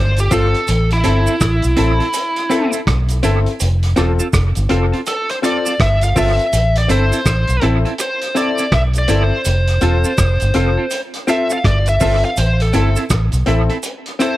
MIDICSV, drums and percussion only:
0, 0, Header, 1, 2, 480
1, 0, Start_track
1, 0, Key_signature, 0, "minor"
1, 0, Tempo, 730816
1, 450, Time_signature, 4, 2, 24, 8
1, 9439, End_track
2, 0, Start_track
2, 0, Title_t, "Drums"
2, 109, Note_on_c, 9, 42, 48
2, 119, Note_on_c, 9, 69, 54
2, 174, Note_off_c, 9, 42, 0
2, 184, Note_off_c, 9, 69, 0
2, 203, Note_on_c, 9, 42, 79
2, 206, Note_on_c, 9, 69, 64
2, 209, Note_on_c, 9, 36, 56
2, 269, Note_off_c, 9, 42, 0
2, 272, Note_off_c, 9, 69, 0
2, 274, Note_off_c, 9, 36, 0
2, 358, Note_on_c, 9, 42, 37
2, 424, Note_off_c, 9, 42, 0
2, 444, Note_on_c, 9, 69, 69
2, 447, Note_on_c, 9, 42, 80
2, 509, Note_off_c, 9, 69, 0
2, 512, Note_off_c, 9, 42, 0
2, 595, Note_on_c, 9, 42, 50
2, 661, Note_off_c, 9, 42, 0
2, 681, Note_on_c, 9, 42, 67
2, 683, Note_on_c, 9, 69, 47
2, 747, Note_off_c, 9, 42, 0
2, 749, Note_off_c, 9, 69, 0
2, 833, Note_on_c, 9, 69, 69
2, 899, Note_off_c, 9, 69, 0
2, 923, Note_on_c, 9, 69, 76
2, 924, Note_on_c, 9, 42, 85
2, 925, Note_on_c, 9, 36, 104
2, 928, Note_on_c, 9, 37, 101
2, 989, Note_off_c, 9, 69, 0
2, 990, Note_off_c, 9, 42, 0
2, 991, Note_off_c, 9, 36, 0
2, 993, Note_off_c, 9, 37, 0
2, 1067, Note_on_c, 9, 42, 48
2, 1075, Note_on_c, 9, 69, 45
2, 1133, Note_off_c, 9, 42, 0
2, 1141, Note_off_c, 9, 69, 0
2, 1160, Note_on_c, 9, 42, 70
2, 1226, Note_off_c, 9, 42, 0
2, 1316, Note_on_c, 9, 42, 34
2, 1382, Note_off_c, 9, 42, 0
2, 1402, Note_on_c, 9, 69, 74
2, 1403, Note_on_c, 9, 42, 84
2, 1468, Note_off_c, 9, 69, 0
2, 1469, Note_off_c, 9, 42, 0
2, 1552, Note_on_c, 9, 42, 56
2, 1618, Note_off_c, 9, 42, 0
2, 1646, Note_on_c, 9, 69, 51
2, 1647, Note_on_c, 9, 42, 64
2, 1711, Note_off_c, 9, 69, 0
2, 1713, Note_off_c, 9, 42, 0
2, 1791, Note_on_c, 9, 69, 69
2, 1793, Note_on_c, 9, 42, 33
2, 1857, Note_off_c, 9, 69, 0
2, 1859, Note_off_c, 9, 42, 0
2, 1886, Note_on_c, 9, 36, 118
2, 1888, Note_on_c, 9, 37, 108
2, 1889, Note_on_c, 9, 42, 82
2, 1951, Note_off_c, 9, 36, 0
2, 1954, Note_off_c, 9, 37, 0
2, 1955, Note_off_c, 9, 42, 0
2, 2027, Note_on_c, 9, 42, 47
2, 2036, Note_on_c, 9, 69, 57
2, 2093, Note_off_c, 9, 42, 0
2, 2101, Note_off_c, 9, 69, 0
2, 2122, Note_on_c, 9, 42, 81
2, 2126, Note_on_c, 9, 69, 62
2, 2188, Note_off_c, 9, 42, 0
2, 2191, Note_off_c, 9, 69, 0
2, 2275, Note_on_c, 9, 42, 36
2, 2340, Note_off_c, 9, 42, 0
2, 2364, Note_on_c, 9, 42, 81
2, 2365, Note_on_c, 9, 69, 76
2, 2430, Note_off_c, 9, 42, 0
2, 2431, Note_off_c, 9, 69, 0
2, 2514, Note_on_c, 9, 42, 51
2, 2580, Note_off_c, 9, 42, 0
2, 2603, Note_on_c, 9, 42, 64
2, 2606, Note_on_c, 9, 69, 48
2, 2611, Note_on_c, 9, 37, 67
2, 2669, Note_off_c, 9, 42, 0
2, 2672, Note_off_c, 9, 69, 0
2, 2677, Note_off_c, 9, 37, 0
2, 2755, Note_on_c, 9, 69, 73
2, 2821, Note_off_c, 9, 69, 0
2, 2845, Note_on_c, 9, 69, 73
2, 2846, Note_on_c, 9, 36, 96
2, 2846, Note_on_c, 9, 42, 81
2, 2849, Note_on_c, 9, 37, 100
2, 2911, Note_off_c, 9, 69, 0
2, 2912, Note_off_c, 9, 36, 0
2, 2912, Note_off_c, 9, 42, 0
2, 2915, Note_off_c, 9, 37, 0
2, 2990, Note_on_c, 9, 42, 48
2, 2997, Note_on_c, 9, 69, 49
2, 3056, Note_off_c, 9, 42, 0
2, 3063, Note_off_c, 9, 69, 0
2, 3083, Note_on_c, 9, 42, 71
2, 3149, Note_off_c, 9, 42, 0
2, 3241, Note_on_c, 9, 42, 31
2, 3307, Note_off_c, 9, 42, 0
2, 3327, Note_on_c, 9, 42, 80
2, 3327, Note_on_c, 9, 69, 73
2, 3392, Note_off_c, 9, 69, 0
2, 3393, Note_off_c, 9, 42, 0
2, 3478, Note_on_c, 9, 42, 54
2, 3544, Note_off_c, 9, 42, 0
2, 3572, Note_on_c, 9, 69, 50
2, 3573, Note_on_c, 9, 42, 63
2, 3637, Note_off_c, 9, 69, 0
2, 3639, Note_off_c, 9, 42, 0
2, 3717, Note_on_c, 9, 69, 70
2, 3719, Note_on_c, 9, 42, 32
2, 3783, Note_off_c, 9, 69, 0
2, 3785, Note_off_c, 9, 42, 0
2, 3808, Note_on_c, 9, 36, 121
2, 3812, Note_on_c, 9, 37, 108
2, 3814, Note_on_c, 9, 42, 88
2, 3873, Note_off_c, 9, 36, 0
2, 3878, Note_off_c, 9, 37, 0
2, 3879, Note_off_c, 9, 42, 0
2, 3950, Note_on_c, 9, 42, 47
2, 3959, Note_on_c, 9, 69, 57
2, 4015, Note_off_c, 9, 42, 0
2, 4024, Note_off_c, 9, 69, 0
2, 4044, Note_on_c, 9, 46, 56
2, 4048, Note_on_c, 9, 36, 59
2, 4049, Note_on_c, 9, 69, 58
2, 4110, Note_off_c, 9, 46, 0
2, 4114, Note_off_c, 9, 36, 0
2, 4115, Note_off_c, 9, 69, 0
2, 4199, Note_on_c, 9, 42, 36
2, 4265, Note_off_c, 9, 42, 0
2, 4288, Note_on_c, 9, 42, 85
2, 4289, Note_on_c, 9, 69, 74
2, 4354, Note_off_c, 9, 42, 0
2, 4355, Note_off_c, 9, 69, 0
2, 4438, Note_on_c, 9, 42, 53
2, 4504, Note_off_c, 9, 42, 0
2, 4528, Note_on_c, 9, 42, 70
2, 4530, Note_on_c, 9, 69, 50
2, 4594, Note_off_c, 9, 42, 0
2, 4596, Note_off_c, 9, 69, 0
2, 4679, Note_on_c, 9, 69, 70
2, 4682, Note_on_c, 9, 42, 34
2, 4745, Note_off_c, 9, 69, 0
2, 4748, Note_off_c, 9, 42, 0
2, 4766, Note_on_c, 9, 42, 81
2, 4767, Note_on_c, 9, 36, 107
2, 4768, Note_on_c, 9, 69, 74
2, 4770, Note_on_c, 9, 37, 103
2, 4832, Note_off_c, 9, 36, 0
2, 4832, Note_off_c, 9, 42, 0
2, 4834, Note_off_c, 9, 69, 0
2, 4835, Note_off_c, 9, 37, 0
2, 4910, Note_on_c, 9, 42, 48
2, 4922, Note_on_c, 9, 69, 47
2, 4975, Note_off_c, 9, 42, 0
2, 4988, Note_off_c, 9, 69, 0
2, 5001, Note_on_c, 9, 42, 72
2, 5067, Note_off_c, 9, 42, 0
2, 5159, Note_on_c, 9, 42, 35
2, 5225, Note_off_c, 9, 42, 0
2, 5244, Note_on_c, 9, 42, 82
2, 5250, Note_on_c, 9, 69, 78
2, 5309, Note_off_c, 9, 42, 0
2, 5316, Note_off_c, 9, 69, 0
2, 5396, Note_on_c, 9, 42, 58
2, 5462, Note_off_c, 9, 42, 0
2, 5491, Note_on_c, 9, 42, 65
2, 5493, Note_on_c, 9, 69, 53
2, 5556, Note_off_c, 9, 42, 0
2, 5558, Note_off_c, 9, 69, 0
2, 5636, Note_on_c, 9, 42, 31
2, 5636, Note_on_c, 9, 69, 67
2, 5701, Note_off_c, 9, 42, 0
2, 5702, Note_off_c, 9, 69, 0
2, 5727, Note_on_c, 9, 36, 115
2, 5729, Note_on_c, 9, 37, 108
2, 5730, Note_on_c, 9, 42, 89
2, 5793, Note_off_c, 9, 36, 0
2, 5795, Note_off_c, 9, 37, 0
2, 5796, Note_off_c, 9, 42, 0
2, 5869, Note_on_c, 9, 42, 47
2, 5880, Note_on_c, 9, 69, 54
2, 5934, Note_off_c, 9, 42, 0
2, 5946, Note_off_c, 9, 69, 0
2, 5963, Note_on_c, 9, 42, 84
2, 5967, Note_on_c, 9, 69, 65
2, 6029, Note_off_c, 9, 42, 0
2, 6033, Note_off_c, 9, 69, 0
2, 6206, Note_on_c, 9, 69, 72
2, 6207, Note_on_c, 9, 42, 81
2, 6272, Note_off_c, 9, 69, 0
2, 6273, Note_off_c, 9, 42, 0
2, 6355, Note_on_c, 9, 42, 50
2, 6421, Note_off_c, 9, 42, 0
2, 6444, Note_on_c, 9, 42, 65
2, 6446, Note_on_c, 9, 69, 52
2, 6510, Note_off_c, 9, 42, 0
2, 6511, Note_off_c, 9, 69, 0
2, 6595, Note_on_c, 9, 69, 69
2, 6661, Note_off_c, 9, 69, 0
2, 6685, Note_on_c, 9, 42, 90
2, 6686, Note_on_c, 9, 69, 81
2, 6687, Note_on_c, 9, 36, 101
2, 6688, Note_on_c, 9, 37, 102
2, 6751, Note_off_c, 9, 42, 0
2, 6751, Note_off_c, 9, 69, 0
2, 6753, Note_off_c, 9, 36, 0
2, 6754, Note_off_c, 9, 37, 0
2, 6830, Note_on_c, 9, 42, 47
2, 6839, Note_on_c, 9, 69, 47
2, 6896, Note_off_c, 9, 42, 0
2, 6905, Note_off_c, 9, 69, 0
2, 6922, Note_on_c, 9, 42, 67
2, 6988, Note_off_c, 9, 42, 0
2, 7164, Note_on_c, 9, 42, 82
2, 7164, Note_on_c, 9, 69, 75
2, 7230, Note_off_c, 9, 42, 0
2, 7230, Note_off_c, 9, 69, 0
2, 7315, Note_on_c, 9, 42, 53
2, 7381, Note_off_c, 9, 42, 0
2, 7408, Note_on_c, 9, 69, 51
2, 7410, Note_on_c, 9, 42, 65
2, 7474, Note_off_c, 9, 69, 0
2, 7476, Note_off_c, 9, 42, 0
2, 7553, Note_on_c, 9, 69, 66
2, 7619, Note_off_c, 9, 69, 0
2, 7648, Note_on_c, 9, 36, 117
2, 7652, Note_on_c, 9, 37, 98
2, 7654, Note_on_c, 9, 42, 84
2, 7714, Note_off_c, 9, 36, 0
2, 7718, Note_off_c, 9, 37, 0
2, 7719, Note_off_c, 9, 42, 0
2, 7789, Note_on_c, 9, 42, 51
2, 7798, Note_on_c, 9, 69, 57
2, 7855, Note_off_c, 9, 42, 0
2, 7864, Note_off_c, 9, 69, 0
2, 7882, Note_on_c, 9, 46, 59
2, 7884, Note_on_c, 9, 69, 63
2, 7889, Note_on_c, 9, 36, 56
2, 7948, Note_off_c, 9, 46, 0
2, 7950, Note_off_c, 9, 69, 0
2, 7955, Note_off_c, 9, 36, 0
2, 8037, Note_on_c, 9, 42, 37
2, 8103, Note_off_c, 9, 42, 0
2, 8123, Note_on_c, 9, 69, 74
2, 8127, Note_on_c, 9, 42, 88
2, 8188, Note_off_c, 9, 69, 0
2, 8193, Note_off_c, 9, 42, 0
2, 8276, Note_on_c, 9, 42, 51
2, 8342, Note_off_c, 9, 42, 0
2, 8363, Note_on_c, 9, 69, 49
2, 8365, Note_on_c, 9, 42, 68
2, 8429, Note_off_c, 9, 69, 0
2, 8430, Note_off_c, 9, 42, 0
2, 8513, Note_on_c, 9, 69, 70
2, 8518, Note_on_c, 9, 42, 31
2, 8578, Note_off_c, 9, 69, 0
2, 8584, Note_off_c, 9, 42, 0
2, 8603, Note_on_c, 9, 69, 78
2, 8605, Note_on_c, 9, 42, 87
2, 8607, Note_on_c, 9, 36, 110
2, 8609, Note_on_c, 9, 37, 102
2, 8669, Note_off_c, 9, 69, 0
2, 8671, Note_off_c, 9, 42, 0
2, 8672, Note_off_c, 9, 36, 0
2, 8674, Note_off_c, 9, 37, 0
2, 8748, Note_on_c, 9, 42, 45
2, 8756, Note_on_c, 9, 69, 47
2, 8814, Note_off_c, 9, 42, 0
2, 8821, Note_off_c, 9, 69, 0
2, 8842, Note_on_c, 9, 42, 76
2, 8907, Note_off_c, 9, 42, 0
2, 8996, Note_on_c, 9, 42, 36
2, 9062, Note_off_c, 9, 42, 0
2, 9083, Note_on_c, 9, 42, 80
2, 9083, Note_on_c, 9, 69, 77
2, 9149, Note_off_c, 9, 42, 0
2, 9149, Note_off_c, 9, 69, 0
2, 9234, Note_on_c, 9, 42, 53
2, 9300, Note_off_c, 9, 42, 0
2, 9328, Note_on_c, 9, 42, 66
2, 9328, Note_on_c, 9, 69, 51
2, 9394, Note_off_c, 9, 42, 0
2, 9394, Note_off_c, 9, 69, 0
2, 9439, End_track
0, 0, End_of_file